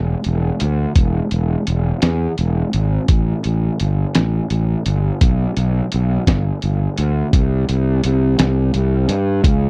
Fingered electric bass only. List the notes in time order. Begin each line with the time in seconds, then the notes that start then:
Already playing: E1
0.26 E1
0.62 D2
0.96 E1
1.32 E1
1.68 E1
2.03 E2
2.39 E1
2.74 G#1
3.09 A1
3.45 A1
3.81 G1
4.16 A1
4.51 A1
4.86 G1
5.22 B1
5.57 B1
5.94 B1
6.27 G1
6.64 G1
6.98 D2
7.33 C2
7.69 C2
8.05 C2
8.40 C2
8.75 C2
9.09 G2
9.44 C#2